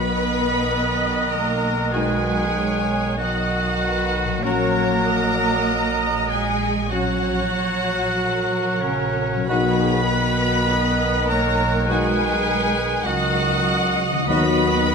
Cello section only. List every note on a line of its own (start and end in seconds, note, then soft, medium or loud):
0.00 1.28 B3 medium
1.33 1.94 A#3 medium
1.94 3.19 G#3 medium
3.19 4.41 F#3 medium
4.44 6.29 A#3 medium
6.30 6.90 G#3 medium
6.92 8.78 F#3 medium
8.82 9.49 C#3 medium
9.50 11.26 B3 medium
11.29 11.88 A#3 medium
11.88 13.05 G#3 medium
13.06 14.30 F#3 medium
14.29 14.95 B3 medium